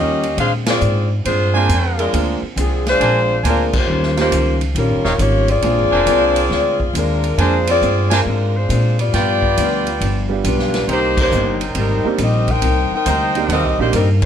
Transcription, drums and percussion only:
0.23 ride
0.38 ride
0.66 snare, ride
0.81 hi-hat pedal
1.25 ride
1.69 hi-hat pedal, ride
1.99 ride
2.14 ride
2.57 hi-hat pedal, ride
2.86 snare, ride
3.01 ride
3.45 hi-hat pedal, ride
3.73 kick, crash
4.03 snare
4.17 snare, ride
4.32 hi-hat pedal, ride
4.61 ride
4.75 ride
5.04 snare
5.19 hi-hat pedal, ride
5.48 ride
5.62 ride
6.07 hi-hat pedal, ride
6.36 ride
6.51 snare
6.80 kick
6.95 hi-hat pedal, ride
7.24 ride
7.38 ride
7.67 ride
7.82 hi-hat pedal
8.11 snare, ride
8.70 hi-hat pedal, ride
8.99 ride
9.14 snare, ride
9.42 kick
9.57 hi-hat pedal, ride
9.87 ride
10.01 ride
10.44 hi-hat pedal, ride
10.59 snare
10.74 snare, ride
10.89 ride
11.17 kick, crash
11.32 hi-hat pedal
11.61 ride
11.75 ride
12.18 hi-hat pedal, ride
12.48 kick, ride
12.62 ride
13.06 hi-hat pedal, ride
13.35 ride
13.49 ride
13.93 hi-hat pedal, ride
14.22 kick, crash

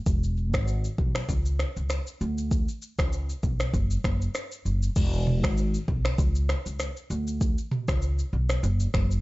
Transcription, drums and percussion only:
0.06 kick, shaker
0.23 shaker
0.54 finger snap, kick, cross-stick, shaker
0.68 shaker
0.84 shaker
0.98 kick
1.15 finger snap, cross-stick, shaker
1.29 kick, shaker
1.46 shaker
1.59 finger snap, cross-stick, shaker
1.76 shaker
1.90 finger snap, cross-stick, shaker
2.07 shaker
2.21 shaker
2.38 shaker
2.51 kick, shaker
2.68 shaker
2.82 shaker
2.99 finger snap, kick, cross-stick, shaker
3.13 shaker
3.29 shaker
3.43 kick, shaker
3.60 finger snap, cross-stick, shaker
3.74 kick, shaker
3.91 shaker
4.04 finger snap, kick, cross-stick, shaker
4.22 shaker
4.35 finger snap, cross-stick, shaker
4.52 shaker
4.66 shaker
4.83 shaker
4.96 kick, crash, shaker
5.13 shaker
5.27 mid tom
5.44 finger snap, kick, cross-stick, shaker
5.57 shaker
5.74 shaker
5.88 kick
6.05 finger snap, cross-stick, shaker
6.18 kick, shaker
6.35 shaker
6.49 finger snap, cross-stick, shaker
6.66 shaker
6.79 finger snap, cross-stick, shaker
6.97 shaker
7.10 shaker
7.27 shaker
7.41 kick, shaker
7.58 shaker
7.71 mid tom
7.88 finger snap, kick, cross-stick, shaker
8.02 shaker
8.19 shaker
8.50 finger snap, cross-stick, shaker
8.63 shaker
8.80 shaker
8.94 finger snap, kick, cross-stick, shaker
9.11 shaker

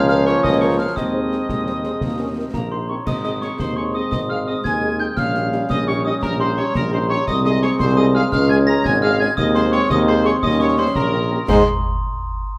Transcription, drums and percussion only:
0.09 snare
0.27 snare
0.44 concert bass drum, snare
0.97 concert bass drum, snare, crash
1.32 snare
1.49 concert bass drum, snare
1.67 snare
1.84 snare
2.01 concert bass drum, snare
2.54 concert bass drum, snare
3.07 concert bass drum, snare, crash
3.24 snare
3.42 snare
3.59 concert bass drum, snare
4.12 concert bass drum, snare
4.65 concert bass drum, snare
5.17 concert bass drum, snare, crash
5.35 snare
5.52 snare
5.70 concert bass drum, snare
6.23 concert bass drum, snare
6.75 concert bass drum, snare
7.28 concert bass drum, snare, crash
7.45 snare
7.63 snare
7.80 concert bass drum, snare
8.32 concert bass drum, snare
8.85 concert bass drum, snare
9.38 concert bass drum, snare, crash
9.55 snare
9.73 snare
9.90 concert bass drum, snare
10.43 concert bass drum, snare
10.95 concert bass drum, snare
11.48 concert bass drum, snare, crash

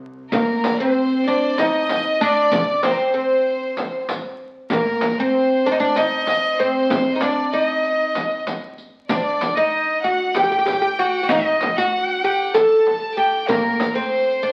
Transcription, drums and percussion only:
0.32 riq, frame drum
0.64 riq, frame drum
1.58 riq, frame drum
1.89 riq, frame drum
2.52 riq, frame drum
2.83 riq, frame drum
3.77 riq, frame drum
4.09 riq, frame drum
4.70 riq, frame drum
5.01 riq, frame drum
5.96 riq, frame drum
6.27 riq, frame drum
6.90 riq, frame drum
7.21 riq
7.53 riq
7.83 riq
8.15 riq, frame drum
8.47 riq, frame drum
8.78 riq
9.09 riq, frame drum
9.41 riq, frame drum
10.35 riq, frame drum
10.66 riq, frame drum
11.29 riq, frame drum
11.61 riq, frame drum
12.55 riq, frame drum
12.87 frame drum
13.49 riq, frame drum
13.80 riq, frame drum

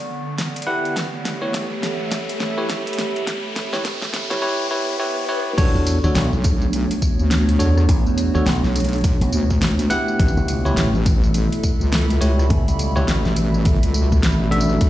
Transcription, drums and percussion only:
0.38 kick, snare, closed hi-hat
0.56 closed hi-hat
0.62 closed hi-hat
0.85 closed hi-hat
0.96 kick, snare, closed hi-hat
1.25 snare, closed hi-hat
1.54 kick, snare, closed hi-hat
1.83 snare, closed hi-hat
2.12 kick, snare, closed hi-hat
2.29 closed hi-hat
2.40 snare
2.69 kick, snare, closed hi-hat
2.87 closed hi-hat
2.93 closed hi-hat
2.99 snare, closed hi-hat
3.16 closed hi-hat
3.27 kick, snare, closed hi-hat
3.56 snare, closed hi-hat
3.74 snare
3.85 kick, snare, closed hi-hat
4.02 snare
4.14 snare, closed hi-hat
4.31 snare
5.58 kick, closed hi-hat, tambourine, crash
5.76 tambourine
5.87 closed hi-hat, tambourine
6.04 tambourine
6.15 snare, closed hi-hat, tambourine
6.33 tambourine
6.44 kick, closed hi-hat, tambourine
6.62 tambourine
6.73 closed hi-hat, tambourine
6.91 closed hi-hat, tambourine
7.02 kick, tambourine
7.19 tambourine
7.31 snare, closed hi-hat, tambourine
7.49 closed hi-hat, tambourine
7.60 closed hi-hat, tambourine
7.78 cross-stick, tambourine
7.89 kick, closed hi-hat, tambourine
8.07 tambourine
8.18 closed hi-hat, tambourine
8.35 tambourine
8.47 snare, closed hi-hat, tambourine
8.64 snare, tambourine
8.76 closed hi-hat, tambourine
8.80 closed hi-hat
8.84 closed hi-hat
8.89 closed hi-hat
8.93 closed hi-hat, tambourine
8.96 closed hi-hat
8.98 closed hi-hat
9.01 closed hi-hat
9.04 kick, closed hi-hat, tambourine
9.21 closed hi-hat, tambourine
9.32 tambourine
9.50 kick, tambourine
9.62 snare, closed hi-hat, tambourine
9.79 closed hi-hat, tambourine
9.90 closed hi-hat, tambourine
10.08 tambourine
10.19 kick, closed hi-hat
10.28 tambourine
10.37 tambourine
10.48 closed hi-hat, tambourine
10.66 tambourine
10.77 snare, closed hi-hat, tambourine
10.95 tambourine
11.06 kick, closed hi-hat, tambourine
11.24 tambourine
11.34 closed hi-hat, tambourine
11.52 closed hi-hat, tambourine
11.63 kick, tambourine
11.81 tambourine
11.93 snare, closed hi-hat, tambourine
12.10 closed hi-hat, tambourine
12.22 closed hi-hat, tambourine
12.39 cross-stick, tambourine
12.50 kick, closed hi-hat
12.68 closed hi-hat, tambourine
12.79 closed hi-hat, tambourine
12.97 tambourine
13.08 snare, closed hi-hat, tambourine
13.25 snare, tambourine
13.36 closed hi-hat, tambourine
13.54 tambourine
13.65 kick, closed hi-hat, tambourine
13.83 closed hi-hat, tambourine
13.94 tambourine
14.12 kick, tambourine
14.23 snare, closed hi-hat, tambourine
14.32 tambourine
14.52 closed hi-hat
14.61 tambourine
14.70 tambourine
14.81 kick, closed hi-hat, tambourine

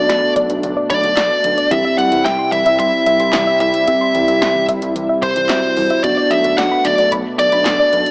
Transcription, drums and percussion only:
0.10 snare, closed hi-hat
0.36 kick, closed hi-hat
0.50 closed hi-hat
0.63 closed hi-hat
0.90 kick, closed hi-hat
1.04 closed hi-hat
1.17 snare, clap, closed hi-hat
1.44 closed hi-hat
1.58 closed hi-hat
1.71 kick, closed hi-hat
1.99 closed hi-hat
2.12 closed hi-hat
2.26 snare, closed hi-hat
2.52 closed hi-hat
2.66 closed hi-hat
2.80 kick, closed hi-hat
3.06 closed hi-hat
3.20 closed hi-hat
3.33 snare, clap, closed hi-hat
3.60 closed hi-hat
3.74 closed hi-hat
3.88 kick, closed hi-hat
4.15 closed hi-hat
4.28 closed hi-hat
4.42 snare, closed hi-hat
4.68 kick, closed hi-hat
4.82 closed hi-hat
4.96 closed hi-hat
5.23 kick, closed hi-hat
5.36 closed hi-hat
5.49 snare, clap, closed hi-hat
5.77 open hi-hat
5.90 closed hi-hat
6.04 kick, closed hi-hat
6.31 closed hi-hat
6.44 closed hi-hat
6.58 snare, closed hi-hat
6.85 closed hi-hat
6.98 closed hi-hat
7.12 kick, closed hi-hat
7.39 closed hi-hat
7.52 closed hi-hat
7.66 snare, clap, closed hi-hat
7.93 closed hi-hat
8.06 closed hi-hat

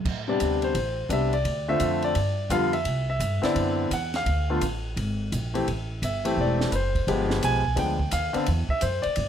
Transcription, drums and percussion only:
0.05 kick, crash
0.40 hi-hat pedal, ride
0.62 ride
0.75 ride
1.10 hi-hat pedal, ride
1.33 ride
1.45 ride
1.80 hi-hat pedal, ride
2.02 ride
2.15 ride
2.50 hi-hat pedal, ride
2.73 ride
2.85 ride
3.20 hi-hat pedal, ride
3.43 snare, ride
3.56 ride
3.91 hi-hat pedal, ride
4.14 snare, ride
4.26 ride
4.61 hi-hat pedal, ride
4.97 ride
5.32 hi-hat pedal, ride
5.55 ride
5.68 ride
6.03 hi-hat pedal, ride
6.25 ride
6.61 snare
6.72 hi-hat pedal, ride
6.95 kick, ride
7.08 ride
7.30 snare
7.43 hi-hat pedal, ride
7.65 kick
7.77 ride
7.99 kick
8.11 hi-hat pedal, ride
8.34 ride
8.46 ride
8.69 kick
8.81 hi-hat pedal, ride
9.03 ride
9.16 ride

